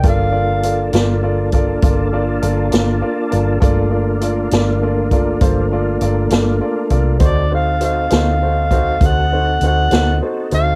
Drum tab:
HH |x-xx-xx-xx-x|x-xx-xx-xx-x|x-xx-xx-xx-x|
SD |---o-----o--|---o-----o--|---o-----o--|
BD |o----oo-----|o----oo----o|o----oo-----|